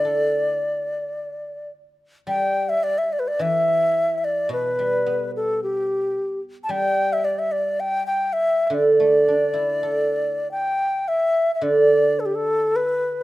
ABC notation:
X:1
M:4/4
L:1/16
Q:1/4=109
K:none
V:1 name="Xiao"
d12 z4 | g3 e d e d/2 B/2 d e4- e3/2 e/2 d2 | B6 A2 G6 z3/2 a/2 | g3 e d e d2 g2 g2 e2- e/2 e/2 d- |
d12 g4 | e3- e/2 e/2 d4 A/2 G/2 A3 B3- B/2 z/2 |]
V:2 name="Guzheng"
[D,A,DEA]8 z8 | G,8 E,8 | B,,2 G,2 B,8 z4 | G,12 z3 D,- |
D, A,2 D2 E2 A8 z | z4 D,12 |]